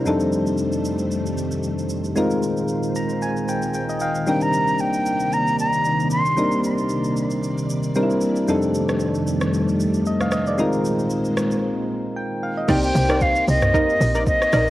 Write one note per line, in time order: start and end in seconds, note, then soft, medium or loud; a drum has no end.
0.00 2.12 C3 medium
0.00 2.12 C5 medium
0.05 2.12 F2 medium
0.05 2.14 F2 medium
0.05 7.91 D#3 medium
0.05 2.12 G3 medium
0.05 2.14 G3 medium
0.05 2.14 A3 medium
0.05 2.12 C4 medium
0.05 2.13 D4 medium
0.05 2.13 D#4 medium
0.05 2.13 A4 medium
0.05 shaker medium
0.20 shaker soft
0.32 shaker medium
0.47 shaker soft
0.58 shaker medium
0.72 shaker medium
0.85 shaker medium
0.99 shaker medium
1.11 shaker medium
1.26 shaker medium
1.38 shaker medium
1.51 shaker medium
1.63 shaker medium
1.79 shaker soft
1.89 shaker medium
2.04 shaker soft
2.16 4.25 A#2 medium
2.16 3.96 G#3 medium
2.16 4.25 G#3 medium
2.16 3.97 C4 medium
2.16 3.97 D#4 medium
2.16 3.97 F4 medium
2.16 3.98 A#4 medium
2.16 4.25 C5 medium
2.16 shaker medium
2.31 shaker medium
2.43 shaker medium
2.57 shaker soft
2.68 shaker medium
2.83 shaker medium
2.95 3.20 A#5 medium
2.95 shaker medium
3.09 shaker soft
3.22 3.46 G#5 medium
3.22 shaker medium
3.37 shaker medium
3.48 3.73 G5 medium
3.48 shaker medium
3.62 shaker medium
3.74 3.99 G5 medium
3.74 shaker medium
3.89 4.00 D#5 medium
3.89 shaker soft
4.00 4.14 F5 medium
4.00 4.15 G5 medium
4.00 shaker medium
4.15 4.40 F5 medium
4.15 shaker soft
4.26 10.54 C3 medium
4.26 6.33 G3 medium
4.26 7.91 A#3 medium
4.26 6.33 C4 medium
4.26 6.34 D4 medium
4.26 6.34 D#4 medium
4.26 6.34 A#4 medium
4.26 10.54 D5 medium
4.26 4.44 G5 medium
4.26 shaker medium
4.41 4.82 A#5 medium
4.41 shaker medium
4.53 shaker medium
4.67 shaker soft
4.79 5.35 G5 medium
4.79 shaker medium
4.93 shaker medium
5.06 shaker medium
5.20 shaker soft
5.32 5.59 A#5 loud
5.32 shaker medium
5.47 shaker soft
5.59 6.08 A#5 medium
5.59 shaker medium
5.73 shaker medium
5.85 shaker medium
6.00 shaker soft
6.11 6.61 C6 loud
6.11 shaker medium
6.26 shaker soft
6.37 7.92 G3 medium
6.37 7.92 C4 medium
6.37 7.92 D4 medium
6.37 7.93 D#4 medium
6.37 7.93 A#4 medium
6.37 shaker medium
6.52 shaker medium
6.64 shaker medium
6.78 shaker soft
6.89 shaker medium
7.04 shaker medium
7.17 shaker medium
7.30 shaker medium
7.43 shaker medium
7.58 shaker medium
7.69 shaker medium
7.83 shaker medium
7.95 8.47 G3 medium
7.95 8.47 A#3 medium
7.95 8.47 C4 medium
7.95 8.48 D4 medium
7.95 8.03 D#4 medium
7.95 8.47 E4 medium
7.95 8.49 A#4 medium
7.95 shaker medium
8.03 8.52 E4 medium
8.10 shaker soft
8.21 shaker medium
8.36 shaker soft
8.47 10.56 F2 medium
8.47 10.54 F2 medium
8.47 12.65 D#3 medium
8.47 10.56 G3 medium
8.47 10.55 G3 medium
8.47 10.56 A3 medium
8.47 10.55 C4 medium
8.47 10.55 D4 medium
8.47 10.55 D#4 medium
8.47 10.55 A4 medium
8.47 shaker medium
8.62 shaker medium
8.75 shaker medium
8.89 cross-stick medium
8.89 shaker soft
9.00 shaker medium
9.15 shaker medium
9.27 shaker medium
9.41 cross-stick medium
9.41 shaker medium
9.54 shaker medium
9.68 shaker soft
9.80 shaker medium
9.94 shaker medium
10.06 10.20 D#5 medium
10.06 shaker medium
10.21 10.32 F5 medium
10.21 cross-stick medium
10.21 shaker soft
10.32 10.46 D#5 medium
10.32 cross-stick loud
10.32 shaker medium
10.47 10.72 D5 medium
10.47 shaker soft
10.58 12.67 A#2 medium
10.58 12.65 G#3 medium
10.58 12.67 G#3 medium
10.58 12.65 C4 medium
10.58 12.65 D#4 medium
10.58 12.66 F4 medium
10.58 12.66 A#4 medium
10.58 12.67 C5 medium
10.58 shaker medium
10.73 shaker medium
10.85 shaker medium
10.99 shaker soft
11.10 shaker medium
11.25 shaker medium
11.37 cross-stick loud
11.37 shaker medium
11.51 shaker medium
12.17 12.41 G5 medium
12.43 12.57 F5 medium
12.58 12.82 D#5 medium
12.68 12.92 C2 loud
12.68 14.70 A#3 medium
12.68 14.70 C4 medium
12.68 12.83 D#4 loud
12.68 14.70 D#4 medium
12.68 14.70 G4 medium
12.68 12.84 A#4 medium
12.68 14.70 C5 medium
12.68 12.84 D5 loud
12.68 12.83 G5 loud
12.68 kick loud
12.68 crash loud
12.68 shaker medium
12.83 13.24 G5 medium
12.83 shaker medium
12.95 13.41 C2 loud
12.95 open hi-hat medium
12.95 shaker medium
13.09 13.22 D#4 medium
13.09 13.22 A#4 medium
13.09 13.22 D5 medium
13.09 cross-stick loud
13.09 shaker soft
13.21 13.48 F5 medium
13.21 kick medium
13.21 shaker medium
13.36 shaker medium
13.48 13.84 C2 loud
13.48 14.23 D#5 loud
13.48 open hi-hat medium
13.48 shaker medium
13.62 cross-stick medium
13.62 mid tom loud
13.62 shaker medium
13.74 14.11 D#4 loud
13.74 14.11 A#4 medium
13.74 14.12 D#5 loud
13.74 kick loud
13.74 shaker medium
13.89 shaker medium
14.00 14.46 A#1 loud
14.00 open hi-hat medium
14.00 shaker loud
14.15 14.27 D#4 medium
14.15 14.27 A#4 medium
14.15 14.27 D5 medium
14.15 shaker medium
14.27 14.70 D#5 loud
14.27 kick medium
14.27 shaker medium
14.42 cross-stick medium
14.42 shaker soft
14.53 14.70 A#1 loud
14.53 14.68 D#4 medium
14.53 14.68 A#4 medium
14.53 14.68 D5 medium
14.53 cross-stick loud
14.53 open hi-hat medium
14.53 shaker medium